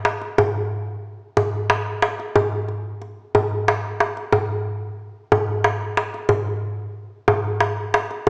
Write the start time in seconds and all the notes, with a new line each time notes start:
0.05 darbuka tek
0.22 darbuka ka
0.38 darbuka dum
1.37 darbuka dum
1.70 darbuka tek
2.02 darbuka tek
2.19 darbuka ka
2.36 darbuka dum
2.68 darbuka ka
3.02 darbuka ka
3.35 darbuka dum
3.68 darbuka tek
4.00 darbuka tek
4.17 darbuka ka
4.32 darbuka dum
5.32 darbuka dum
5.64 darbuka tek
5.97 darbuka tek
6.14 darbuka ka
6.29 darbuka dum
7.28 darbuka dum
7.60 darbuka tek
7.94 darbuka tek
8.11 darbuka ka